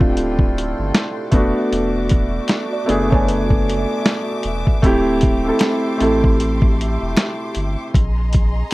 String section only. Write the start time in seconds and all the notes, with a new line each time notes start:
Already playing: G4 A4 G5 C6
1.32 F#4 E5 D6
4.83 G4 C6
7.94 G#4 D#5 A#5 C6